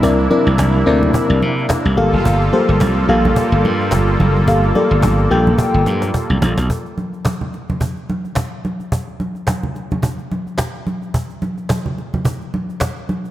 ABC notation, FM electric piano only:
X:1
M:4/4
L:1/16
Q:"Swing 16ths" 1/4=108
K:Gdor
V:1 name="FM electric piano"
[CEBd] z [CEBd]2 z2 [CEBd]4 z4 [B,GAf]2- | [B,GAf]2 [B,GAc]2 z2 [B,GAf]4 z6 | [B,GAf] z [B,GAd]2 z2 [B,GAg]4 z6 | z16 |
z16 | z16 |]